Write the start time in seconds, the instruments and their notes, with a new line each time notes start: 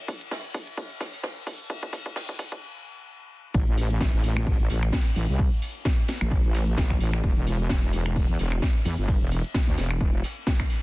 0.08 kick, open hi-hat, ride
0.21 closed hi-hat
0.31 kick, snare, ride
0.44 closed hi-hat
0.54 kick, open hi-hat, ride
0.67 closed hi-hat
0.78 kick, ride
0.90 closed hi-hat
1.00 kick, snare, open hi-hat, ride
1.13 open hi-hat
1.23 kick, snare, ride
1.37 closed hi-hat
1.47 kick, open hi-hat
1.60 closed hi-hat
1.70 kick, ride
1.83 kick, closed hi-hat
1.93 kick, open hi-hat, ride
2.06 kick, closed hi-hat
2.16 kick, snare, ride
2.29 kick, closed hi-hat
2.39 kick, open hi-hat, ride
2.52 kick, closed hi-hat
3.54 wobble bass A1, kick, closed hi-hat, ride
3.67 wobble bass A1, closed hi-hat
3.78 open hi-hat, ride
3.90 closed hi-hat
4.01 kick, snare, closed hi-hat, ride
4.13 wobble bass A1, closed hi-hat
4.24 open hi-hat, ride
4.37 finger snap, closed hi-hat
4.46 kick, closed hi-hat, ride
4.60 wobble bass A1, closed hi-hat
4.69 wobble bass A1, snare, open hi-hat, ride
4.83 finger snap, closed hi-hat
4.92 kick, snare, closed hi-hat, ride
5.06 closed hi-hat
5.16 wobble bass A1, open hi-hat
5.29 wobble bass C2, closed hi-hat
5.39 kick, closed hi-hat, ride
5.52 closed hi-hat
5.62 open hi-hat, ride
5.75 closed hi-hat
5.85 kick, snare, closed hi-hat, ride
5.98 closed hi-hat
6.08 snare, open hi-hat, ride
6.21 wobble bass A1, finger snap, closed hi-hat
6.31 kick, closed hi-hat, ride
6.43 wobble bass A1, closed hi-hat, ride
6.54 snare, open hi-hat, ride
6.67 closed hi-hat
6.77 wobble bass A1, kick, snare, closed hi-hat, ride
6.90 finger snap, kick, closed hi-hat, ride
7.00 wobble bass A1, open hi-hat, ride
7.13 finger snap, snare, closed hi-hat
7.24 wobble bass E1, kick, closed hi-hat, ride
7.37 wobble bass E1, closed hi-hat
7.46 open hi-hat, ride
7.60 closed hi-hat
7.69 kick, snare, closed hi-hat
7.83 wobble bass E1, closed hi-hat
7.92 open hi-hat, ride
8.06 finger snap, closed hi-hat
8.16 kick, closed hi-hat, ride
8.29 wobble bass E2, closed hi-hat
8.39 wobble bass E1, snare, open hi-hat, ride
8.52 finger snap, closed hi-hat
8.62 kick, snare, closed hi-hat, ride
8.75 closed hi-hat
8.85 wobble bass E2, open hi-hat
8.98 wobble bass G1, closed hi-hat
9.08 kick, closed hi-hat, ride
9.21 wobble bass E1, closed hi-hat
9.31 open hi-hat, ride
9.44 closed hi-hat
9.54 kick, snare, closed hi-hat, ride
9.67 wobble bass D2, closed hi-hat
9.77 wobble bass E1, snare, open hi-hat, ride
9.91 finger snap, closed hi-hat
10.01 wobble bass E1, kick, closed hi-hat
10.14 closed hi-hat
10.23 snare, open hi-hat, ride
10.37 closed hi-hat
10.47 kick, snare, closed hi-hat, ride
10.59 finger snap, kick, snare, closed hi-hat, ride
10.70 open hi-hat, ride